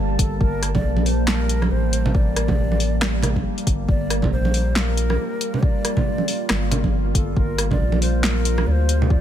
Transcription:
Already playing: G1 G3 A#3 A5
0.19 G1 A4, kick, closed hi-hat
0.41 G1 A#4, kick
0.63 cross-stick, closed hi-hat
0.75 D5, kick, high conga, low conga
0.84 A#1
0.97 high conga
1.06 C5, open hi-hat
1.28 A#4, snare, clap
1.49 closed hi-hat
1.62 cross-stick, high conga
1.71 A1 C5
1.93 closed hi-hat
2.06 low conga
2.15 D5, kick
2.36 cross-stick, closed hi-hat
2.48 kick, high conga, low conga
2.58 A1
2.72 high conga
2.80 open hi-hat
3.02 cross-stick, snare, clap
3.23 cross-stick, closed hi-hat, low conga
3.36 kick, high conga
3.58 closed hi-hat
3.67 G1, kick, closed hi-hat
3.88 G1 F4 D5, kick
4.10 cross-stick, closed hi-hat
4.22 kick, high conga, low conga
4.32 A#1 C5
4.45 high conga
4.54 open hi-hat
4.76 A#4, snare, clap
4.97 closed hi-hat
5.10 cross-stick, high conga
5.41 closed hi-hat
5.54 low conga
5.63 D5, kick
5.85 cross-stick, closed hi-hat
5.97 kick, high conga, low conga
6.18 high conga
6.28 open hi-hat
6.50 G1, cross-stick, snare, clap
6.71 closed hi-hat, low conga
6.84 kick, high conga
7.15 G1 A4, kick, closed hi-hat
7.37 G1 A#4, kick
7.58 cross-stick, closed hi-hat
7.71 D5, kick, high conga, low conga
7.80 A#1
7.92 high conga
8.02 C5, open hi-hat
8.23 A#4, snare, clap
8.45 closed hi-hat
8.58 cross-stick, high conga
8.67 D2 D5
8.71 C5
8.89 closed hi-hat
9.02 low conga
9.10 D5, kick

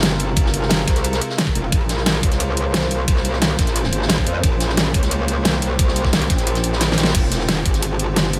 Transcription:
Already playing: C3 G#3 F4 A#4
0.02 G1, snare, closed hi-hat, ride
0.11 snare
0.19 closed hi-hat, ride
0.36 kick, closed hi-hat, ride
0.46 snare
0.54 closed hi-hat, ride
0.62 snare
0.69 snare, closed hi-hat, ride
0.87 C2, kick, snare, closed hi-hat, ride
0.95 snare, closed hi-hat
1.04 closed hi-hat, ride
1.13 snare, closed hi-hat
1.22 closed hi-hat, ride
1.30 snare
1.38 snare, closed hi-hat, ride
1.47 kick
1.55 F1, closed hi-hat, ride
1.64 ride
1.72 A#1 A#3 C#4 C5, kick, closed hi-hat, ride
1.81 ride
1.89 snare, closed hi-hat, ride
1.97 snare
2.06 snare, closed hi-hat, ride
2.23 C#2, kick, closed hi-hat, ride
2.32 snare, closed hi-hat
2.40 closed hi-hat, ride
2.57 closed hi-hat, ride
2.74 C2, snare, closed hi-hat, ride
2.82 snare
2.91 closed hi-hat, ride
3.08 kick, closed hi-hat, ride
3.16 snare
3.25 closed hi-hat, ride
3.33 snare
3.42 snare, closed hi-hat, ride
3.59 A#1, kick, snare, closed hi-hat, ride
3.67 snare, closed hi-hat
3.76 closed hi-hat, ride
3.83 snare
3.93 G#1, closed hi-hat, ride
4.02 snare
4.09 A#1, snare, closed hi-hat, ride
4.18 kick
4.27 F2, closed hi-hat, ride
4.35 ride
4.43 A#1 G4, kick, closed hi-hat, ride
4.53 ride
4.60 snare, closed hi-hat, ride
4.69 snare
4.77 snare, closed hi-hat, ride
4.94 C#2, kick, closed hi-hat, ride
5.03 snare, closed hi-hat
5.11 closed hi-hat, ride
5.28 closed hi-hat, ride
5.45 C2, snare, closed hi-hat, ride
5.54 snare
5.62 closed hi-hat, ride
5.79 kick, closed hi-hat, ride
5.88 snare
5.96 closed hi-hat, ride
6.04 kick, snare
6.13 snare, closed hi-hat, ride
6.22 closed hi-hat
6.30 A#1, kick, snare, closed hi-hat, ride
6.38 snare, closed hi-hat
6.47 closed hi-hat, ride
6.55 snare, closed hi-hat
6.63 closed hi-hat, ride
6.73 snare
6.81 snare, closed hi-hat, ride
6.92 snare
6.98 snare, closed hi-hat, ride
7.03 snare, closed hi-hat, ride
7.07 snare
7.15 F1 C3 G#3 F4 C5, kick, closed hi-hat, crash, ride
7.23 ride
7.32 snare, closed hi-hat, ride
7.40 snare
7.48 snare, closed hi-hat, ride
7.66 G#1, kick, closed hi-hat, ride
7.74 snare, closed hi-hat
7.82 closed hi-hat, ride
7.99 closed hi-hat, ride
8.16 G1, snare, closed hi-hat, ride
8.25 snare
8.33 closed hi-hat, ride

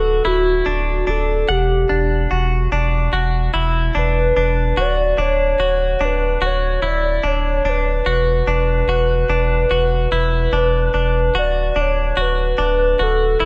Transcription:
Already playing: D1 F#4 A4
0.25 D1 E4 F#4
0.66 D1 D4
1.07 D1 D4 A4
1.49 E1 G4 F#5
1.89 E1 D4
2.31 E1 F#4
2.72 E1 D4
3.13 E1 F#4
3.54 E1 E4
3.95 E1 D4 B4
4.37 E1 D4
4.77 D1 F#4 D5
5.18 D1 D4 C#5
5.59 D1 F#4
6.00 D1 D4
6.05 B4
6.42 D1 F#4
6.46 C#5
6.82 D1 E4
6.87 D5
7.23 D1 D4 C#5
7.65 D1 D4
7.69 B4
8.06 E1 F#4
8.47 E1 D4
8.88 E1 F#4
9.29 E1 D4
9.71 E1 F#4
10.12 E1 E4
10.53 E1 D4
10.57 B4
10.94 E1 D4
11.35 D1 F#4 D5
11.72 D1 D4 D5
11.81 C#5
12.17 D1 F#4
12.22 B4
12.58 D1 D4
12.99 D1 F#4 A4
13.40 D1 E4

